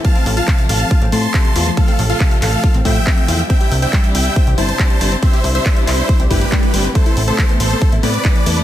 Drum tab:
HH |xxoxxxoxxxoxxxox|xxoxxxoxxxoxxxox|xxoxxxo-xxoxxxox|xxoxxxoxxxoxxxox|
CP |----x-------x---|----x-x-----x---|----x-------x---|----x-x-----x---|
BD |o---o---o---o---|o---o---o-o-o---|o---o---o---o---|o---o---o-o-o---|

HH |xxoxxxoxxxoxxxox|
CP |----x-------x---|
BD |o---o---o---o---|